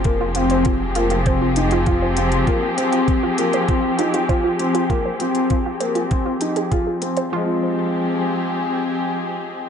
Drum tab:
HH |x-xxx-xxx-xxx-xx|x-xxx-xxx-xxx-xx|x-xxx-xxx-xxx-xx|----------------|
BD |o---o---o---o---|o---o---o---o---|o---o---o---o---|----------------|